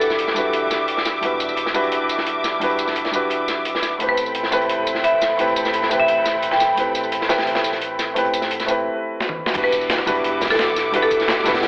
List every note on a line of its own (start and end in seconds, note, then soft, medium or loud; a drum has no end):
0.00 1.21 E1 medium
0.00 0.34 G3 medium
0.00 3.96 G3 medium
0.00 0.35 D4 medium
0.00 0.36 E4 medium
0.00 0.37 F#4 medium
0.00 0.41 A4 medium
0.00 0.38 B4 medium
0.00 3.96 E5 medium
0.00 1.20 F#5 medium
0.00 3.96 D6 medium
0.00 closed hi-hat medium
0.00 tambourine medium
0.10 snare soft
0.10 tambourine soft
0.19 closed hi-hat medium
0.27 snare soft
0.34 1.19 G3 medium
0.34 1.20 D4 medium
0.34 1.21 E4 medium
0.34 1.21 F#4 medium
0.34 closed hi-hat medium
0.34 tambourine medium
0.38 1.22 B4 medium
0.53 closed hi-hat medium
0.70 snare soft
0.70 closed hi-hat medium
0.70 tambourine medium
0.88 closed hi-hat medium
0.97 snare soft
1.05 snare soft
1.05 closed hi-hat medium
1.05 tambourine medium
1.21 2.60 E1 medium
1.21 1.72 G3 medium
1.21 1.72 D4 medium
1.21 1.73 E4 medium
1.21 1.73 F#4 medium
1.21 closed hi-hat medium
1.25 1.74 B4 medium
1.40 closed hi-hat medium
1.40 tambourine medium
1.49 tambourine soft
1.56 closed hi-hat medium
1.66 snare soft
1.73 1.83 G3 medium
1.73 1.83 D4 medium
1.73 1.84 E4 medium
1.73 1.84 F#4 medium
1.73 1.84 B4 loud
1.73 closed hi-hat medium
1.73 tambourine medium
1.83 closed hi-hat soft
1.92 closed hi-hat medium
2.09 closed hi-hat medium
2.09 tambourine medium
2.18 snare soft
2.26 closed hi-hat medium
2.44 snare soft
2.44 closed hi-hat medium
2.44 tambourine medium
2.59 3.98 E1 medium
2.59 3.10 G3 medium
2.59 3.11 D4 medium
2.59 3.11 E4 medium
2.59 3.12 F#4 medium
2.59 closed hi-hat medium
2.63 3.12 B4 medium
2.70 closed hi-hat soft
2.78 closed hi-hat medium
2.78 tambourine medium
2.87 snare soft
2.87 tambourine soft
2.95 closed hi-hat medium
3.05 snare soft
3.05 closed hi-hat soft
3.11 3.97 G3 medium
3.11 3.97 D4 medium
3.11 3.98 E4 medium
3.11 3.99 F#4 medium
3.11 closed hi-hat medium
3.11 tambourine medium
3.15 3.99 B4 medium
3.30 closed hi-hat medium
3.48 snare soft
3.48 closed hi-hat medium
3.48 tambourine medium
3.65 closed hi-hat medium
3.75 snare soft
3.82 snare soft
3.82 closed hi-hat medium
3.82 tambourine medium
3.98 5.37 A1 medium
3.98 4.49 A3 medium
3.98 4.49 C4 medium
3.98 8.82 C4 medium
3.98 4.50 E4 medium
3.98 4.51 G4 medium
3.98 8.82 A4 medium
3.98 8.82 G5 medium
3.98 8.82 B5 medium
3.98 closed hi-hat medium
4.02 4.51 B4 medium
4.09 4.29 B4 medium
4.17 closed hi-hat medium
4.17 tambourine medium
4.26 tambourine soft
4.35 closed hi-hat medium
4.43 snare soft
4.51 4.61 A3 medium
4.51 4.61 C4 medium
4.51 4.61 E4 medium
4.51 4.61 G4 medium
4.51 4.62 B4 loud
4.51 closed hi-hat medium
4.51 tambourine medium
4.61 closed hi-hat soft
4.69 closed hi-hat medium
4.87 closed hi-hat medium
4.87 tambourine medium
4.95 snare soft
5.04 5.25 E5 medium
5.04 closed hi-hat medium
5.21 snare soft
5.21 closed hi-hat medium
5.21 tambourine medium
5.37 6.76 A1 medium
5.37 5.87 A3 medium
5.37 5.88 C4 medium
5.37 5.89 E4 medium
5.37 5.89 G4 medium
5.37 closed hi-hat medium
5.41 5.90 B4 medium
5.47 closed hi-hat soft
5.56 closed hi-hat medium
5.56 tambourine medium
5.65 snare soft
5.65 tambourine soft
5.73 closed hi-hat medium
5.83 snare soft
5.89 6.74 A3 medium
5.89 6.75 C4 medium
5.89 6.75 E4 medium
5.89 6.76 G4 medium
5.89 closed hi-hat medium
5.89 tambourine medium
5.93 6.77 B4 medium
6.00 6.34 E5 medium
6.08 closed hi-hat medium
6.25 snare soft
6.25 closed hi-hat medium
6.25 tambourine medium
6.42 closed hi-hat medium
6.51 6.86 G5 medium
6.51 snare soft
6.60 snare soft
6.60 closed hi-hat medium
6.60 tambourine medium
6.75 8.14 A1 medium
6.75 7.26 A3 medium
6.75 7.27 C4 medium
6.75 7.27 E4 medium
6.75 7.28 G4 medium
6.75 closed hi-hat medium
6.80 7.28 B4 medium
6.95 closed hi-hat medium
6.95 tambourine medium
7.03 tambourine soft
7.12 closed hi-hat medium
7.21 snare soft
7.28 7.38 A3 medium
7.28 7.38 C4 medium
7.28 7.39 E4 medium
7.28 7.39 G4 medium
7.28 7.39 B4 loud
7.28 snare medium
7.28 closed hi-hat medium
7.28 tambourine medium
7.38 snare loud
7.38 closed hi-hat medium
7.47 snare soft
7.47 closed hi-hat medium
7.55 snare loud
7.55 closed hi-hat medium
7.64 snare soft
7.64 closed hi-hat medium
7.64 tambourine medium
7.72 snare soft
7.72 closed hi-hat medium
7.81 closed hi-hat medium
7.99 snare soft
7.99 closed hi-hat medium
7.99 tambourine medium
8.14 8.86 A1 medium
8.14 8.65 A3 medium
8.14 8.66 C4 medium
8.14 8.66 E4 medium
8.14 8.67 G4 medium
8.14 closed hi-hat medium
8.18 8.67 B4 medium
8.25 closed hi-hat soft
8.33 closed hi-hat medium
8.33 tambourine medium
8.42 snare soft
8.42 tambourine soft
8.51 closed hi-hat medium
8.60 snare soft
8.60 closed hi-hat soft
8.60 tambourine soft
8.66 8.85 A3 medium
8.66 8.85 C4 medium
8.66 8.86 E4 medium
8.66 8.86 G4 medium
8.66 closed hi-hat medium
8.66 tambourine medium
8.70 8.87 B4 medium
9.20 snare medium
9.29 high tom medium
9.46 snare medium
9.53 9.97 E1 loud
9.53 10.04 G3 medium
9.53 11.68 G3 medium
9.53 10.04 D4 medium
9.53 10.05 E4 medium
9.53 10.05 F#4 medium
9.53 11.68 E5 medium
9.53 11.68 F#5 medium
9.53 11.68 D6 medium
9.53 kick loud
9.53 closed hi-hat medium
9.53 closed hi-hat loud
9.53 crash loud
9.57 10.06 B4 medium
9.64 9.84 B4 medium
9.72 kick medium
9.72 closed hi-hat medium
9.72 tambourine medium
9.81 tambourine soft
9.90 snare loud
9.90 closed hi-hat medium
9.98 cross-stick medium
9.98 snare soft
10.06 11.44 E1 medium
10.06 10.16 G3 loud
10.06 10.16 D4 medium
10.06 10.16 E4 medium
10.06 10.16 F#4 medium
10.06 10.17 B4 loud
10.06 closed hi-hat medium
10.06 tambourine medium
10.15 closed hi-hat soft
10.24 closed hi-hat loud
10.24 closed hi-hat medium
10.41 kick loud
10.41 snare medium
10.41 closed hi-hat medium
10.41 tambourine medium
10.46 snare medium
10.46 closed hi-hat medium
10.50 10.71 A4 medium
10.50 cross-stick medium
10.50 snare medium
10.50 closed hi-hat medium
10.50 tambourine soft
10.54 snare medium
10.54 closed hi-hat medium
10.59 snare loud
10.59 closed hi-hat medium
10.59 closed hi-hat loud
10.76 snare soft
10.76 closed hi-hat medium
10.76 tambourine medium
10.91 11.42 G3 medium
10.91 11.43 D4 medium
10.91 11.44 E4 medium
10.91 11.44 F#4 medium
10.91 closed hi-hat medium
10.96 11.45 B4 loud
11.03 11.51 A4 medium
11.03 closed hi-hat soft
11.11 kick medium
11.11 closed hi-hat medium
11.11 tambourine medium
11.20 snare soft
11.20 tambourine soft
11.28 snare loud
11.28 closed hi-hat medium
11.37 snare soft
11.44 11.68 E1 medium
11.44 11.68 G3 medium
11.44 11.68 D4 medium
11.44 11.68 E4 medium
11.44 11.68 F#4 medium
11.44 snare loud
11.44 closed hi-hat medium
11.44 tambourine medium
11.48 11.68 B4 loud
11.54 snare loud
11.54 closed hi-hat medium
11.63 snare loud
11.63 closed hi-hat medium